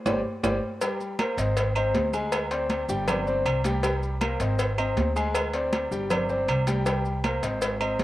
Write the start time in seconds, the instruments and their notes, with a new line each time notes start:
0.05 upright bass G1, grand piano G4 C5 D5, cowbell, high conga, high timbale, claves, maracas
0.43 upright bass G1, grand piano G4 C5 D5, cowbell, high conga, high timbale, claves, maracas
0.81 grand piano G3 G4 G5, cowbell, high conga, low agogo, maracas
1.00 high conga, maracas
1.19 grand piano A#3 A#4 C5, cowbell, high conga, low agogo, claves, maracas
1.37 upright bass G#1, grand piano C4 C5 D#5, cowbell, high conga, maracas
1.57 cowbell, high conga, low agogo, maracas
1.75 grand piano C4 C5 D#5, high conga, low agogo, claves, maracas
1.94 upright bass D2, cowbell, high conga, low timbale, maracas
2.13 grand piano G#3 G#4 G#5, high conga, low agogo, maracas
2.32 cowbell, high conga, low agogo, claves, maracas
2.51 grand piano C4 C5 D5, cowbell, high conga, maracas
2.70 cowbell, high conga, low agogo, maracas
2.89 upright bass G1, grand piano G3 G4 G5, high conga, maracas
3.08 grand piano C4 C5 D5, cowbell, high conga, low conga, low agogo, claves, maracas
3.27 grand piano C4 C5 D5, high conga, maracas
3.45 upright bass C2, cowbell, high conga, low agogo, claves, maracas
3.64 grand piano G3 G4 G5, cowbell, high conga, maracas
3.83 grand piano G3 G4 G5, cowbell, low agogo, maracas
4.02 high conga, maracas
4.21 grand piano A#3 A#4 C5, cowbell, high conga, low agogo, claves, maracas
4.40 upright bass G#1, grand piano C4 C5 D#5, cowbell, high conga, maracas
4.59 cowbell, high conga, low agogo, maracas
4.78 grand piano C4 C5 D#5, high conga, low agogo, claves, maracas
4.97 upright bass D2, cowbell, high conga, low timbale, maracas
5.16 grand piano G#3 G#4 G#5, low agogo, maracas
5.35 cowbell, high conga, low agogo, claves, maracas
5.54 grand piano C4 C5 D5, cowbell, high conga, maracas
5.73 cowbell, high conga, low agogo, maracas
5.91 upright bass G1, grand piano G3 G4 G5, high conga, maracas
6.10 grand piano C4 C5 D5, cowbell, high conga, low conga, low agogo, claves, maracas
6.29 grand piano C4 C5 D5, high conga, maracas
6.48 upright bass C2, cowbell, high conga, low agogo, claves, maracas
6.67 grand piano G3 G4 G5, cowbell, high conga, maracas
6.86 grand piano G3 G4 G5, cowbell, high conga, low agogo, maracas
7.05 high conga, maracas
7.24 grand piano A#3 A#4 C5, cowbell, high conga, low agogo, claves, maracas
7.42 upright bass G#1, grand piano C4 C5 D#5, cowbell, high conga, maracas
7.62 cowbell, high conga, low agogo, maracas
7.80 grand piano C4 C5 D#5, high conga, low agogo, claves, maracas
7.99 upright bass D2, cowbell, high conga, low timbale, maracas